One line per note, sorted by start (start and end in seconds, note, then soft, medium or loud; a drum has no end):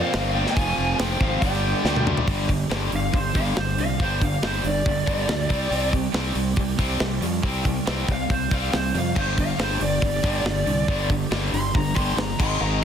0.00 0.12 A#2 loud
0.00 0.13 F3 loud
0.00 0.13 A#3 loud
0.00 0.54 A#3 medium
0.00 0.33 C4 medium
0.00 0.54 F4 medium
0.00 0.55 C5 medium
0.00 0.36 F5 loud
0.13 0.44 G1 medium
0.13 0.34 A#2 medium
0.13 0.34 F3 loud
0.13 0.35 A#3 medium
0.13 snare loud
0.13 open hi-hat medium
0.35 0.55 A#2 medium
0.35 0.56 F3 medium
0.35 0.56 A#3 loud
0.35 0.49 D4 medium
0.35 0.49 G5 loud
0.47 0.55 G5 medium
0.47 snare soft
0.51 1.40 C4 medium
0.51 0.57 D#4 medium
0.55 0.72 F1 loud
0.55 0.98 F2 medium
0.55 0.99 C3 loud
0.55 1.41 F3 medium
0.55 0.99 F3 loud
0.55 2.26 F4 medium
0.55 0.97 F4 medium
0.55 0.96 G#5 loud
0.55 kick loud
0.55 open hi-hat medium
0.78 0.93 F1 medium
0.99 1.15 F1 medium
0.99 1.19 F2 medium
0.99 1.20 C3 medium
0.99 1.20 F3 medium
0.99 1.18 C4 medium
0.99 1.22 G5 loud
0.99 snare loud
0.99 open hi-hat medium
1.19 1.36 G#1 medium
1.19 1.41 F2 medium
1.19 1.41 C3 medium
1.19 1.41 F3 medium
1.19 1.40 C4 medium
1.19 1.43 F5 loud
1.19 kick medium
1.41 1.72 G1 loud
1.41 1.83 G2 loud
1.41 1.84 D3 loud
1.41 2.25 G3 medium
1.41 1.84 G3 loud
1.41 2.02 D4 medium
1.41 2.24 D4 medium
1.41 2.02 G5 loud
1.41 kick medium
1.41 open hi-hat medium
1.84 2.15 D2 medium
1.84 2.05 G2 medium
1.84 2.06 D3 medium
1.84 2.06 G3 loud
1.84 snare medium
1.96 high tom medium
2.06 2.25 G2 medium
2.06 2.26 D3 medium
2.06 2.27 G3 medium
2.06 mid tom loud
2.17 floor tom medium
2.26 2.63 G1 loud
2.26 2.46 G2 medium
2.26 2.47 D3 loud
2.26 5.46 G3 medium
2.26 2.48 G3 medium
2.26 5.46 D4 medium
2.26 7.17 G4 medium
2.26 kick loud
2.26 open hi-hat medium
2.48 2.68 G2 medium
2.48 2.68 D3 medium
2.48 kick medium
2.48 open hi-hat medium
2.70 2.88 G1 medium
2.70 2.90 G2 medium
2.70 2.91 D3 medium
2.70 2.92 G3 medium
2.70 snare loud
2.70 open hi-hat medium
2.91 3.10 G1 medium
2.91 3.11 G2 medium
2.91 3.12 D3 medium
2.91 open hi-hat medium
2.96 3.15 F5 medium
3.13 3.31 G1 loud
3.13 3.33 G2 medium
3.13 3.33 D3 medium
3.13 3.36 C5 medium
3.13 kick loud
3.13 open hi-hat medium
3.35 3.53 G1 medium
3.35 3.55 G2 medium
3.35 3.56 D3 medium
3.35 3.56 G3 loud
3.35 3.57 F5 medium
3.35 kick medium
3.35 open hi-hat medium
3.57 3.74 G1 medium
3.57 3.77 G2 medium
3.57 3.77 D3 medium
3.57 3.78 C5 medium
3.57 snare loud
3.57 open hi-hat medium
3.78 3.96 C2 medium
3.78 3.98 G2 medium
3.78 3.98 D3 medium
3.78 4.00 F5 loud
3.78 open hi-hat medium
4.00 4.35 G1 loud
4.00 4.20 G2 loud
4.00 4.21 D3 medium
4.00 4.21 G3 loud
4.00 4.22 C5 medium
4.00 kick loud
4.00 open hi-hat medium
4.21 4.41 G2 medium
4.21 4.41 D3 medium
4.21 4.44 F5 loud
4.21 kick medium
4.21 open hi-hat medium
4.43 4.60 G1 medium
4.43 4.63 G2 medium
4.43 4.63 D3 loud
4.43 4.64 G3 loud
4.43 4.65 C5 medium
4.43 snare loud
4.43 open hi-hat medium
4.64 4.82 G1 medium
4.64 4.84 G2 medium
4.64 4.84 D3 medium
4.64 5.90 D5 medium
4.64 open hi-hat medium
4.86 5.04 G1 loud
4.86 5.05 G2 medium
4.86 5.05 D3 medium
4.86 kick loud
4.86 open hi-hat medium
5.06 5.25 G1 medium
5.06 5.27 G2 medium
5.06 5.28 D3 medium
5.06 5.28 G3 loud
5.06 kick medium
5.06 open hi-hat medium
5.29 5.46 D2 medium
5.29 5.48 G2 medium
5.29 5.48 D3 medium
5.29 snare loud
5.29 open hi-hat medium
5.49 5.68 C2 medium
5.49 5.70 C3 medium
5.49 5.70 G3 medium
5.49 9.12 C4 medium
5.49 5.71 C4 medium
5.49 9.12 D5 medium
5.49 kick loud
5.49 open hi-hat medium
5.71 6.07 C2 medium
5.71 5.91 C3 medium
5.71 5.91 G3 medium
5.71 5.92 C4 loud
5.71 open hi-hat medium
5.92 6.11 C3 medium
5.92 6.12 G3 medium
5.92 kick medium
5.92 open hi-hat medium
6.12 6.32 C2 medium
6.12 6.33 C3 medium
6.12 6.34 G3 medium
6.12 6.35 C4 loud
6.12 snare loud
6.12 open hi-hat medium
6.34 6.53 C2 medium
6.34 6.55 C3 medium
6.34 6.55 G3 medium
6.34 open hi-hat medium
6.56 6.75 C2 medium
6.56 6.77 C3 medium
6.56 6.77 G3 medium
6.56 kick loud
6.56 open hi-hat medium
6.78 6.97 C2 medium
6.78 6.99 C3 medium
6.78 6.99 G3 medium
6.78 7.00 C4 loud
6.78 kick medium
6.78 open hi-hat medium
7.00 7.18 C2 medium
7.00 7.20 C3 medium
7.00 7.20 G3 medium
7.00 snare loud
7.00 open hi-hat medium
7.20 7.39 F2 medium
7.20 7.41 C3 medium
7.20 7.41 G3 medium
7.20 9.13 F4 medium
7.20 open hi-hat medium
7.43 7.79 C2 medium
7.43 7.63 C3 medium
7.43 7.64 G3 medium
7.43 7.64 C4 loud
7.43 kick loud
7.43 open hi-hat medium
7.64 7.84 C3 medium
7.64 7.85 G3 medium
7.64 kick medium
7.64 open hi-hat medium
7.86 8.05 C2 medium
7.86 8.07 C3 medium
7.86 8.07 G3 loud
7.86 8.07 C4 loud
7.86 snare loud
8.08 8.26 C2 medium
8.08 8.28 C3 medium
8.08 8.28 G3 medium
8.08 8.31 F5 loud
8.08 kick medium
8.08 open hi-hat medium
8.30 8.47 C2 loud
8.30 8.49 C3 medium
8.30 8.50 G3 medium
8.30 8.51 C5 loud
8.30 kick loud
8.30 open hi-hat medium
8.51 8.69 C2 medium
8.51 8.71 C3 medium
8.51 8.72 G3 loud
8.51 8.73 C4 loud
8.51 8.74 F5 loud
8.51 kick medium
8.51 open hi-hat medium
8.72 8.91 C2 medium
8.72 8.92 C3 medium
8.72 8.92 G3 medium
8.72 8.95 C5 medium
8.72 snare loud
8.72 open hi-hat medium
8.94 9.12 F2 medium
8.94 9.14 C3 medium
8.94 9.14 G3 medium
8.94 open hi-hat medium
8.98 9.17 F5 medium
9.14 9.51 G1 medium
9.14 9.36 G2 loud
9.14 9.36 D3 medium
9.14 12.35 G3 medium
9.14 9.36 G3 loud
9.14 12.35 D4 medium
9.14 12.36 G4 medium
9.14 kick loud
9.14 crash medium
9.18 9.38 C5 medium
9.38 9.58 G2 medium
9.38 9.58 D3 medium
9.38 9.60 F5 loud
9.38 kick medium
9.38 open hi-hat medium
9.59 9.77 G1 medium
9.59 9.79 G2 medium
9.59 9.79 D3 medium
9.59 9.80 G3 loud
9.59 9.81 C5 medium
9.59 snare loud
9.59 open hi-hat medium
9.80 9.98 G1 medium
9.80 10.00 G2 medium
9.80 10.00 D3 medium
9.80 11.07 D5 loud
9.80 open hi-hat medium
10.02 10.20 G1 medium
10.02 10.22 G2 medium
10.02 10.22 D3 medium
10.02 kick loud
10.02 open hi-hat medium
10.23 10.41 G1 medium
10.23 10.43 G2 loud
10.23 10.44 D3 loud
10.23 10.45 G3 loud
10.23 kick medium
10.23 open hi-hat medium
10.44 10.62 G1 medium
10.44 10.64 G2 medium
10.44 10.65 D3 medium
10.44 snare loud
10.66 10.84 C2 medium
10.66 10.86 G2 medium
10.66 10.86 D3 medium
10.66 open hi-hat medium
10.88 11.24 G1 loud
10.88 11.09 G2 loud
10.88 11.09 D3 medium
10.88 11.09 G3 loud
10.88 kick loud
10.88 open hi-hat medium
11.10 11.30 G2 medium
11.10 11.30 D3 medium
11.10 kick medium
11.10 open hi-hat medium
11.31 11.49 G1 medium
11.31 11.51 G2 loud
11.31 11.52 D3 medium
11.31 11.52 G3 loud
11.31 snare loud
11.31 open hi-hat medium
11.53 11.71 G1 loud
11.53 11.72 G2 medium
11.53 11.73 D3 medium
11.53 11.75 C6 loud
11.53 open hi-hat medium
11.75 11.93 G1 loud
11.75 11.94 G2 medium
11.75 11.95 D3 medium
11.75 11.96 A#5 loud
11.75 kick loud
11.75 open hi-hat medium
11.95 12.14 G1 medium
11.95 12.16 G2 medium
11.95 12.16 D3 loud
11.95 12.17 G3 loud
11.95 12.17 C6 loud
11.95 kick medium
11.95 open hi-hat medium
12.17 12.35 G1 medium
12.17 12.37 G2 medium
12.17 12.37 D3 medium
12.17 12.40 A#5 medium
12.17 snare loud
12.17 open hi-hat medium
12.38 12.57 G#1 medium
12.38 12.58 G#2 medium
12.38 12.58 D#3 medium
12.38 12.60 G#3 loud
12.38 12.84 G#3 medium
12.38 12.84 D#4 medium
12.38 12.84 A#4 medium
12.38 12.61 C6 loud
12.38 kick loud
12.38 crash loud
12.59 12.84 G#1 loud
12.59 12.80 G#2 loud
12.59 12.80 D#3 medium
12.59 12.81 G#3 loud
12.59 12.82 A#5 loud
12.81 12.84 G#2 medium